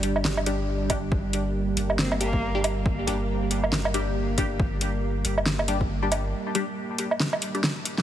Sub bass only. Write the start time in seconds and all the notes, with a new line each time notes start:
Already playing: G1
0.25 G1
1.12 G1
1.77 G1
3.07 G1
3.73 G1
4.60 G1
5.25 G1